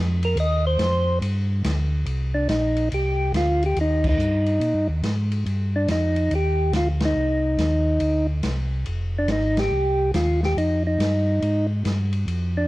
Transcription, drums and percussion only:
0.23 ride medium
0.37 ride medium
0.79 snare medium
0.79 hi-hat pedal medium
0.79 ride medium
1.22 ride medium
1.64 snare medium
1.64 hi-hat pedal medium
1.64 ride medium
2.06 ride medium
2.49 snare medium
2.49 hi-hat pedal soft
2.49 ride medium
2.76 ride soft
2.92 ride medium
3.34 snare medium
3.34 hi-hat pedal medium
3.34 ride medium
3.62 ride soft
3.76 ride medium
4.04 kick medium
4.04 crash medium
4.19 hi-hat pedal soft
4.46 ride soft
4.61 ride medium
5.03 snare medium
5.03 hi-hat pedal medium
5.03 ride medium
5.32 ride soft
5.46 ride medium
5.88 snare medium
5.88 hi-hat pedal medium
5.88 ride medium
6.16 ride soft
6.31 ride medium
6.73 snare medium
6.73 hi-hat pedal medium
6.73 ride medium
7.00 snare medium
7.00 ride medium
7.58 snare medium
7.58 hi-hat pedal soft
7.58 ride medium
8.00 ride medium
8.43 snare medium
8.43 hi-hat pedal medium
8.43 ride medium
8.86 ride medium
9.28 snare medium
9.28 hi-hat pedal medium
9.28 ride medium
9.57 snare medium
9.57 ride medium
10.14 snare medium
10.14 hi-hat pedal medium
10.14 ride medium
10.43 snare soft
10.58 ride medium
11.00 snare medium
11.00 hi-hat pedal medium
11.00 ride medium
11.42 ride medium
11.85 snare medium
11.85 hi-hat pedal medium
11.85 ride medium
12.12 ride soft
12.28 ride medium

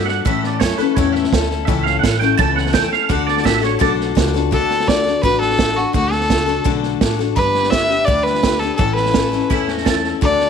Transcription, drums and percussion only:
0.08 snare soft
0.26 kick loud
0.26 snare soft
0.44 snare soft
0.61 kick medium
0.61 snare loud
0.61 hi-hat pedal medium
0.79 snare soft
0.97 kick loud
0.97 snare soft
1.15 snare soft
1.24 snare soft
1.33 kick medium
1.33 snare loud
1.33 hi-hat pedal medium
1.51 snare soft
1.68 kick loud
1.68 snare soft
1.86 snare soft
2.04 kick medium
2.04 snare loud
2.04 hi-hat pedal medium
2.22 snare soft
2.39 kick loud
2.39 snare soft
2.57 snare soft
2.66 snare soft
2.74 kick medium
2.74 snare loud
2.74 hi-hat pedal medium
2.92 snare soft
3.09 kick loud
3.09 snare soft
3.28 snare soft
3.37 snare soft
3.46 kick medium
3.46 snare loud
3.46 hi-hat pedal medium
3.63 snare soft
3.81 kick loud
3.81 snare soft
4.00 snare soft
4.17 kick medium
4.17 snare loud
4.17 hi-hat pedal medium
4.35 snare soft
4.52 kick loud
4.52 snare soft
4.71 snare soft
4.80 snare soft
4.88 kick medium
4.88 snare loud
4.88 hi-hat pedal medium
5.06 snare soft
5.23 kick loud
5.23 snare soft
5.42 snare soft
5.50 snare soft
5.59 kick medium
5.59 snare loud
5.59 hi-hat pedal medium
5.77 snare soft
5.94 kick loud
5.94 snare soft
6.12 snare soft
6.21 snare soft
6.30 kick medium
6.30 snare loud
6.30 hi-hat pedal medium
6.47 snare soft
6.65 kick loud
6.65 snare soft
6.83 snare soft
7.01 kick medium
7.01 snare loud
7.01 hi-hat pedal medium
7.19 snare soft
7.36 kick loud
7.36 snare soft
7.54 snare soft
7.63 snare soft
7.72 kick medium
7.72 snare loud
7.72 hi-hat pedal medium
7.90 snare soft
8.08 kick loud
8.08 snare soft
8.26 snare soft
8.35 snare soft
8.43 kick medium
8.43 snare loud
8.43 hi-hat pedal medium
8.61 snare soft
8.79 kick loud
8.79 snare soft
8.97 snare soft
9.05 snare soft
9.14 kick medium
9.14 snare loud
9.14 hi-hat pedal medium
9.33 snare soft
9.50 kick loud
9.50 snare soft
9.68 snare soft
9.77 snare soft
9.86 kick medium
9.86 snare loud
9.86 hi-hat pedal medium
10.04 snare soft
10.22 kick loud
10.22 snare soft
10.40 snare soft

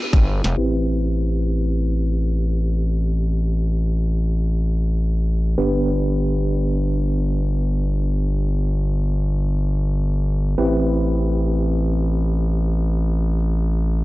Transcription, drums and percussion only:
0.13 kick loud
0.13 closed hi-hat soft
0.44 snare soft
0.44 closed hi-hat medium
0.89 shaker medium
2.14 shaker medium
5.89 shaker medium
7.14 shaker medium
8.39 shaker medium
9.64 shaker medium
10.89 shaker medium
12.14 shaker medium
13.39 shaker medium

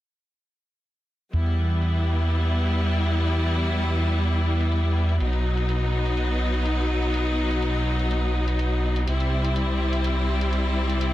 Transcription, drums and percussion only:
1.33 closed hi-hat medium
1.46 closed hi-hat soft
1.70 closed hi-hat soft
1.82 closed hi-hat medium
2.19 closed hi-hat soft
2.30 closed hi-hat medium
2.67 closed hi-hat soft
2.79 closed hi-hat medium
3.15 closed hi-hat soft
3.27 closed hi-hat medium
3.40 closed hi-hat soft
3.64 closed hi-hat soft
3.75 closed hi-hat medium
4.12 closed hi-hat soft
4.24 closed hi-hat medium
4.61 closed hi-hat soft
4.72 closed hi-hat medium
5.09 closed hi-hat soft
5.20 closed hi-hat medium
5.33 closed hi-hat soft
5.57 closed hi-hat soft
5.69 closed hi-hat medium
6.06 closed hi-hat soft
6.17 closed hi-hat medium
6.54 closed hi-hat soft
6.66 closed hi-hat medium
7.03 closed hi-hat soft
7.14 closed hi-hat medium
7.27 closed hi-hat soft
7.51 closed hi-hat soft
7.62 closed hi-hat medium
7.99 closed hi-hat soft
8.11 closed hi-hat medium
8.48 closed hi-hat soft
8.59 closed hi-hat medium
8.96 closed hi-hat soft
9.07 closed hi-hat medium
9.20 closed hi-hat soft
9.44 closed hi-hat soft
9.56 closed hi-hat medium
9.93 closed hi-hat soft
10.04 closed hi-hat medium
10.41 closed hi-hat soft
10.53 closed hi-hat medium
10.90 closed hi-hat soft
11.01 closed hi-hat medium

